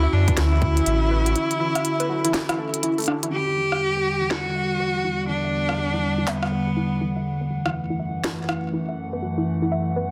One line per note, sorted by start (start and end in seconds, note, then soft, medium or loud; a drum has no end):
0.00 3.28 D3 medium
0.00 3.28 C#4 medium
0.00 0.14 E4 loud
0.00 3.28 E4 medium
0.00 3.28 F#4 medium
0.00 0.11 E5 loud
0.13 0.30 F#2 loud
0.13 0.39 D4 loud
0.28 0.32 B4 loud
0.28 kick loud
0.28 closed hi-hat medium
0.37 0.81 D2 loud
0.37 2.83 E4 loud
0.37 0.50 F#4 medium
0.37 snare loud
0.37 closed hi-hat medium
0.52 0.60 E4 loud
0.62 kick loud
0.77 0.82 E4 loud
0.77 closed hi-hat medium
0.86 1.36 A1 medium
0.86 0.99 E5 loud
0.86 closed hi-hat medium
1.11 1.19 B4 loud
1.26 1.34 F#4 medium
1.26 closed hi-hat medium
1.36 1.48 E4 loud
1.36 closed hi-hat medium
1.51 closed hi-hat soft
1.60 1.68 E4 loud
1.75 1.83 E5 loud
1.75 cross-stick medium
1.75 closed hi-hat medium
1.85 closed hi-hat medium
2.00 2.05 B4 loud
2.00 closed hi-hat soft
2.09 2.22 F#4 medium
2.25 2.32 E4 loud
2.25 closed hi-hat medium
2.34 cross-stick medium
2.34 snare loud
2.34 closed hi-hat medium
2.49 2.54 E4 loud
2.49 cross-stick medium
2.49 closed hi-hat soft
2.59 2.73 A4 medium
2.74 closed hi-hat medium
2.83 2.96 E4 medium
2.83 closed hi-hat medium
2.98 3.03 A4 medium
2.98 closed hi-hat soft
3.00 closed hi-hat soft
3.02 closed hi-hat soft
3.04 closed hi-hat soft
3.06 3.15 D4 loud
3.06 cross-stick soft
3.06 closed hi-hat soft
3.23 3.28 E4 medium
3.23 closed hi-hat medium
3.32 7.22 E2 medium
3.32 7.22 D3 medium
3.32 7.22 G3 medium
3.32 3.45 E4 loud
3.32 4.32 G4 loud
3.32 10.11 F#5 medium
3.57 3.64 E4 medium
3.72 3.80 E5 medium
3.72 cross-stick soft
3.97 4.01 B4 medium
4.21 4.29 E4 loud
4.31 5.28 F#4 loud
4.31 snare loud
4.46 4.51 E4 medium
4.55 4.68 E5 loud
4.80 4.87 B4 loud
4.95 5.03 G4 medium
5.04 5.17 E4 loud
5.29 6.29 D4 medium
5.29 5.37 E4 loud
5.44 5.52 E5 medium
5.69 5.73 B4 loud
5.69 cross-stick soft
5.78 5.91 G4 medium
5.93 6.01 E4 loud
6.18 6.23 E4 loud
6.27 7.01 B3 medium
6.27 6.40 E5 loud
6.27 cross-stick soft
6.27 snare loud
6.43 cross-stick medium
6.52 6.60 B4 loud
6.67 6.75 G4 medium
6.77 6.89 E4 medium
7.01 7.09 E4 loud
7.16 7.24 E5 loud
7.26 10.11 F#2 medium
7.26 10.11 E3 medium
7.26 10.11 A3 medium
7.41 7.46 B4 medium
7.50 7.63 F#4 medium
7.66 7.73 E4 loud
7.66 cross-stick soft
7.90 7.95 E4 loud
8.00 8.12 E5 loud
8.24 8.32 B4 loud
8.24 snare loud
8.39 8.47 F#4 medium
8.49 8.61 E4 loud
8.49 cross-stick medium
8.73 8.81 E4 loud
8.88 8.96 E5 loud
9.13 9.18 B4 medium
9.22 9.35 F#4 medium
9.38 9.45 E4 medium
9.62 9.67 E4 loud
9.72 9.84 E5 loud
9.96 10.04 B4 loud